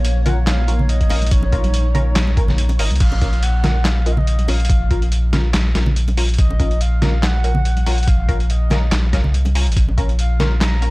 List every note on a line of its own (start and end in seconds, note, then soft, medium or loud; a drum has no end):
0.00 1.09 A#1 loud
0.00 2.97 A#3 medium
0.00 2.97 D#4 medium
0.00 2.96 C#5 medium
0.05 closed hi-hat medium
0.26 0.37 C#4 medium
0.26 0.37 F4 medium
0.26 0.37 A#4 loud
0.26 0.35 F#5 loud
0.26 closed hi-hat medium
0.26 low conga medium
0.47 0.86 F5 loud
0.47 snare loud
0.47 clap medium
0.47 closed hi-hat medium
0.68 0.75 C#4 medium
0.68 0.75 F4 medium
0.68 0.75 A#4 medium
0.68 closed hi-hat medium
0.79 low conga medium
0.89 1.33 D#5 loud
0.89 closed hi-hat medium
1.01 kick medium
1.01 closed hi-hat soft
1.10 1.30 A#1 medium
1.10 1.17 C#4 medium
1.10 1.17 F4 medium
1.10 1.17 A#4 medium
1.10 open hi-hat loud
1.10 high bongo medium
1.22 closed hi-hat medium
1.22 high conga medium
1.27 closed hi-hat medium
1.31 2.78 A#1 loud
1.31 2.79 C#5 loud
1.31 kick loud
1.31 closed hi-hat medium
1.43 high bongo medium
1.52 1.64 C#4 medium
1.52 1.64 F4 medium
1.52 1.64 A#4 medium
1.52 kick medium
1.52 closed hi-hat medium
1.64 closed hi-hat soft
1.64 high conga medium
1.74 closed hi-hat medium
1.95 2.06 C#4 medium
1.95 2.06 F4 medium
1.95 2.06 A#4 loud
1.95 closed hi-hat medium
1.95 low conga medium
2.16 snare loud
2.16 clap medium
2.16 closed hi-hat medium
2.27 high conga medium
2.37 2.44 C#4 medium
2.37 2.44 F4 medium
2.37 2.44 A#4 medium
2.37 kick loud
2.37 closed hi-hat medium
2.48 snare soft
2.48 low conga medium
2.58 closed hi-hat medium
2.69 closed hi-hat soft
2.69 high bongo medium
2.79 2.90 G#1 loud
2.79 2.87 C#4 medium
2.79 2.87 F4 medium
2.79 2.87 A#4 medium
2.79 2.89 D#5 medium
2.79 open hi-hat loud
2.91 3.00 C2 medium
2.91 closed hi-hat medium
2.91 high conga medium
2.95 closed hi-hat medium
3.00 4.47 A#1 loud
3.00 3.44 F5 loud
3.00 kick loud
3.00 closed hi-hat medium
3.00 crash loud
3.12 high bongo medium
3.21 3.33 C#4 medium
3.21 3.33 F4 medium
3.21 3.33 A#4 medium
3.21 kick medium
3.21 closed hi-hat medium
3.33 closed hi-hat soft
3.43 3.87 F#5 loud
3.43 closed hi-hat medium
3.64 3.75 C#4 loud
3.64 3.75 F4 medium
3.64 3.75 A#4 loud
3.64 snare medium
3.64 closed hi-hat medium
3.64 low conga loud
3.85 4.06 F5 loud
3.85 snare loud
3.85 clap loud
3.85 closed hi-hat medium
4.06 4.13 C#4 medium
4.06 4.13 F4 medium
4.06 4.13 A#4 medium
4.06 4.13 D#5 medium
4.06 closed hi-hat medium
4.12 4.19 F5 medium
4.17 4.27 D#5 medium
4.17 low conga medium
4.27 4.50 D#5 medium
4.27 closed hi-hat medium
4.39 closed hi-hat soft
4.39 high conga medium
4.48 4.68 A#1 medium
4.48 4.55 C#4 medium
4.48 4.55 F4 medium
4.48 4.55 A#4 medium
4.48 5.12 F5 loud
4.48 open hi-hat loud
4.48 high bongo medium
4.60 closed hi-hat medium
4.65 closed hi-hat medium
4.69 5.53 A#1 loud
4.69 kick loud
4.69 closed hi-hat medium
4.91 5.02 C#4 medium
4.91 5.02 F4 medium
4.91 5.02 A#4 medium
4.91 kick medium
4.91 closed hi-hat medium
5.02 closed hi-hat soft
5.12 closed hi-hat medium
5.33 5.44 C#4 loud
5.33 5.44 F4 medium
5.33 5.44 A#4 loud
5.33 snare medium
5.33 closed hi-hat medium
5.33 low conga medium
5.54 5.74 A#1 loud
5.54 snare loud
5.54 clap medium
5.54 closed hi-hat medium
5.75 6.37 A#1 medium
5.75 5.82 C#4 medium
5.75 5.82 F4 medium
5.75 5.82 A#4 medium
5.75 snare medium
5.75 closed hi-hat medium
5.86 low conga medium
5.96 closed hi-hat medium
6.08 closed hi-hat soft
6.08 high bongo medium
6.08 high conga medium
6.17 6.25 C#4 medium
6.17 6.25 F4 medium
6.17 6.25 A#4 medium
6.17 open hi-hat medium
6.29 closed hi-hat medium
6.34 closed hi-hat medium
6.38 7.85 A#1 loud
6.38 6.82 D#5 loud
6.38 kick loud
6.38 closed hi-hat medium
6.50 high bongo medium
6.59 6.71 C#4 medium
6.59 6.71 F4 medium
6.59 6.71 A#4 medium
6.59 kick medium
6.59 closed hi-hat medium
6.71 closed hi-hat soft
6.81 7.25 F5 loud
6.81 closed hi-hat medium
7.02 7.13 C#4 medium
7.02 7.13 F4 medium
7.02 7.13 A#4 loud
7.02 snare medium
7.02 closed hi-hat medium
7.02 low conga medium
7.23 8.09 F#5 loud
7.23 snare loud
7.23 clap medium
7.23 closed hi-hat medium
7.44 7.51 C#4 medium
7.44 7.51 F4 medium
7.44 7.51 A#4 medium
7.44 closed hi-hat medium
7.55 low conga medium
7.65 closed hi-hat medium
7.77 closed hi-hat soft
7.77 high conga medium
7.86 8.06 A#1 medium
7.86 7.94 C#4 medium
7.86 7.94 F4 medium
7.86 7.94 A#4 medium
7.86 open hi-hat medium
7.86 high bongo medium
7.98 closed hi-hat soft
8.03 closed hi-hat medium
8.07 8.91 A#1 loud
8.07 8.44 F5 loud
8.07 kick loud
8.07 closed hi-hat medium
8.29 8.40 C#4 medium
8.29 8.40 F4 medium
8.29 8.40 A#4 medium
8.29 kick medium
8.29 closed hi-hat soft
8.40 8.52 F5 medium
8.40 closed hi-hat soft
8.50 8.92 D#5 medium
8.50 closed hi-hat medium
8.70 8.82 C#4 medium
8.70 8.82 F4 medium
8.70 8.82 A#4 loud
8.70 snare medium
8.70 closed hi-hat soft
8.70 low conga medium
8.92 9.15 A#1 loud
8.92 snare loud
8.92 clap medium
8.92 closed hi-hat medium
9.13 9.68 C2 medium
9.13 9.20 C#4 medium
9.13 9.20 F4 medium
9.13 9.20 A#4 medium
9.13 kick medium
9.13 snare medium
9.13 closed hi-hat medium
9.24 low conga medium
9.34 closed hi-hat medium
9.45 closed hi-hat soft
9.45 high bongo medium
9.45 high conga medium
9.55 9.62 C#4 medium
9.55 9.62 F4 medium
9.55 9.62 A#4 medium
9.55 open hi-hat medium
9.67 9.76 G#1 loud
9.67 closed hi-hat soft
9.72 closed hi-hat medium
9.76 10.90 A#1 loud
9.76 10.90 F3 medium
9.76 10.90 A#3 medium
9.76 10.90 C#5 medium
9.76 kick loud
9.76 closed hi-hat medium
9.88 high bongo medium
9.98 10.09 C#4 medium
9.98 10.09 F4 medium
9.98 10.09 A#4 medium
9.98 kick medium
9.98 closed hi-hat medium
10.09 closed hi-hat soft
10.19 10.58 F5 loud
10.19 closed hi-hat medium
10.40 10.51 C#4 medium
10.40 10.51 F4 medium
10.40 10.51 A#4 loud
10.40 snare medium
10.40 closed hi-hat soft
10.40 low conga medium
10.61 10.90 A#5 loud
10.61 snare loud
10.61 clap medium
10.61 closed hi-hat medium
10.82 10.89 C#4 medium
10.82 10.89 F4 medium
10.82 10.89 A#4 medium
10.82 closed hi-hat medium